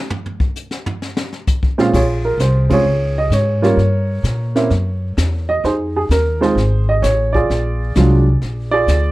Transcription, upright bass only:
1.94 2.37 A#1 medium
2.38 2.83 C2 medium
2.85 3.29 C#2 medium
3.30 3.76 G#2 medium
3.77 4.22 G2 medium
4.23 4.69 A#2 medium
4.70 5.15 F#2 medium
5.17 5.62 E2 medium
5.64 6.08 F2 medium
6.09 6.54 D#2 medium
6.55 7.01 G#1 medium
7.02 7.47 A1 medium
7.50 7.94 A#1 medium
7.96 8.40 C2 medium
8.42 8.86 A#1 medium
8.87 9.12 D2 medium

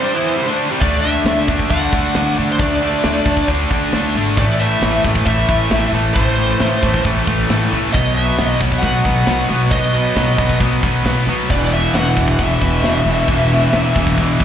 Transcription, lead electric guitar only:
0.00 0.56 C5 medium
0.81 1.02 D5 medium
1.01 1.44 E5 loud
1.70 2.33 F#5 loud
2.52 2.59 C5 medium
2.60 3.45 D5 loud
4.38 4.61 D5 loud
4.60 5.01 E5 loud
5.26 5.89 E5 loud
6.14 7.00 C5 loud
7.93 8.16 D#5 medium
8.14 8.56 E5 loud
8.79 9.44 F#5 loud
9.71 10.57 D#5 loud
11.51 11.71 D5 medium
11.73 11.94 E5 medium
11.95 12.41 F#5 loud
12.43 14.45 E5 medium

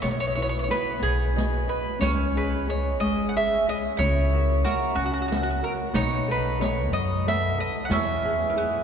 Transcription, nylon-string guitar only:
0.02 0.68 B3 medium
0.37 0.67 E4 soft
0.37 0.67 F#4 soft
0.37 0.68 B4 medium
0.68 0.94 E4 soft
0.68 0.94 F#4 soft
0.68 0.95 B4 soft
0.99 1.66 B3 medium
1.35 1.66 F#4 soft
1.35 1.66 B4 soft
1.35 1.67 D#5 soft
1.67 1.93 F#4 soft
1.67 1.94 B4 soft
1.67 1.94 D#5 soft
1.99 2.66 C#4 medium
2.36 2.66 G#4 soft
2.36 2.67 C#5 soft
2.36 2.68 D#5 soft
2.67 3.22 G#4 soft
2.67 3.22 C#5 soft
2.67 3.22 D#5 soft
3.00 3.65 G#3 medium
3.37 3.67 G#4 medium
3.37 3.67 C#5 soft
3.68 3.93 G#4 soft
3.68 3.93 C#5 soft
3.68 3.93 D#5 soft
3.99 4.64 C#4 medium
4.33 4.64 F#4 soft
4.33 4.64 A#4 soft
4.33 4.65 E5 medium
4.65 5.18 F#4 soft
4.65 5.19 A#4 soft
4.65 5.19 E5 soft
4.95 5.60 C#4 medium
5.31 5.61 F#4 medium
5.31 5.61 A#4 soft
5.31 5.62 E5 medium
5.62 5.87 F#4 soft
5.62 5.88 A#4 soft
5.62 5.88 E5 soft
5.93 6.58 B3 medium
6.28 6.58 A4 soft
6.28 6.59 B4 soft
6.28 6.59 D#5 soft
6.59 7.13 A4 soft
6.59 7.13 B4 soft
6.59 7.14 D#5 soft
6.92 7.57 F#3 medium
7.27 7.57 A4 medium
7.27 7.57 B4 medium
7.27 7.58 F#5 medium
7.58 7.84 A4 soft
7.58 7.83 B4 soft
7.58 7.84 D#5 soft
7.89 8.54 E3 medium
8.24 8.75 B3 soft
8.24 8.55 E4 soft
8.24 8.55 G#4 soft
8.56 8.84 E4 soft
8.56 8.84 G#4 soft

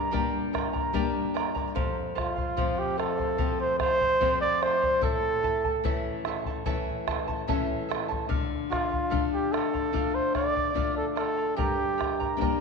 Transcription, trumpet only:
2.18 2.81 F4 medium
2.79 2.99 G4 medium
2.99 3.56 A4 medium
3.61 3.79 C5 medium
3.79 4.37 C5 medium
4.41 4.64 D5 medium
4.62 5.03 C5 medium
5.04 5.81 A4 medium
8.71 9.28 F4 medium
9.33 9.54 G4 medium
9.52 10.17 A4 medium
10.15 10.35 C5 medium
10.35 10.92 D5 medium
10.97 11.06 A4 medium
11.17 11.55 A4 medium
11.57 12.35 G4 medium

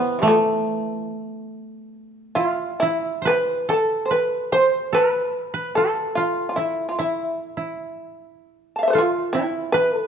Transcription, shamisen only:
0.00 0.24 B3 medium
0.19 0.25 C3 soft
0.19 0.33 E3 soft
0.26 0.37 F3 soft
0.26 3.24 A3 medium
2.35 2.78 F4 medium
2.80 3.22 E4 medium
3.27 3.66 B4 medium
3.70 4.01 A4 medium
4.06 4.11 C5 soft
4.12 4.50 B4 medium
4.52 4.91 C5 medium
4.94 5.72 B4 medium
5.75 6.13 A4 medium
6.15 6.46 F4 medium
6.49 6.56 F4 soft
6.56 6.87 E4 medium
6.89 6.96 F4 soft
6.99 7.73 E4 medium
8.76 8.87 F5 soft
8.76 8.83 A5 soft
8.83 8.94 E5 soft
8.88 8.98 B4 soft
8.88 8.93 C5 soft
8.93 9.04 A4 soft
8.98 9.32 F4 medium
9.33 9.68 E4 medium
9.72 9.95 B4 medium
9.95 10.07 A4 medium

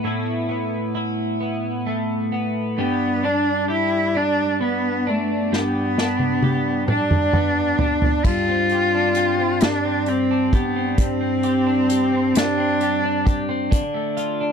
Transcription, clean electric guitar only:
0.00 1.85 A3 soft
0.00 0.48 B3 soft
0.04 2.78 A2 medium
0.04 0.94 E4 soft
0.49 1.40 B3 soft
0.95 2.78 E4 medium
1.40 2.32 B3 soft
1.87 2.87 A3 soft
2.32 3.23 B3 soft
2.78 5.51 G2 medium
2.78 3.68 G4 medium
3.23 4.15 D4 soft
3.68 5.53 G4 medium
4.15 5.07 D4 soft
4.61 7.34 B3 soft
5.07 5.98 D4 soft
5.52 8.25 G2 medium
5.52 6.43 G4 soft
5.99 6.89 D4 soft
6.44 8.72 G4 soft
6.90 7.80 D4 soft
7.35 8.35 B3 soft
7.80 8.52 D4 soft
8.26 9.61 G2 medium
8.49 9.38 C4 soft
8.72 9.15 G4 soft
8.95 10.31 D4 soft
9.17 10.07 G4 soft
9.39 9.84 C4 soft
9.62 10.97 G2 medium
9.85 10.75 C4 soft
10.08 10.52 G4 soft
10.31 11.66 D4 soft
10.53 11.43 G4 soft
10.76 11.20 C4 soft
10.98 12.33 G2 medium
11.21 12.11 C4 soft
11.44 11.88 G4 medium
11.67 13.03 D4 soft
11.89 12.79 G4 medium
12.12 12.57 C4 soft
12.34 13.81 G2 medium
12.58 13.48 C4 medium
12.81 13.24 G4 medium
13.03 14.40 D4 soft
13.25 13.81 G4 medium
13.49 13.81 C4 soft
13.71 14.52 D3 medium
13.94 14.52 A3 soft
14.17 14.52 F4 medium
14.41 14.52 D4 medium

